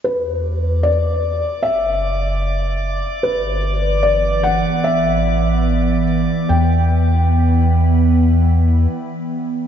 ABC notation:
X:1
M:4/4
L:1/8
Q:1/4=75
K:Em
V:1 name="Synth texture"
[dd']8- | [dd']8 | z8 |]
V:2 name="Felt piano"
B2 d2 e3 z | B2 d f e3 z | g8 |]
V:3 name="Synth drone" clef=bass
z8 | [E,B,]8 | [E,B,]8 |]
V:4 name="Analog synth bass" clef=bass
E,,4 F,,,4 | G,,,4 A,,,4 | E,,6 z2 |]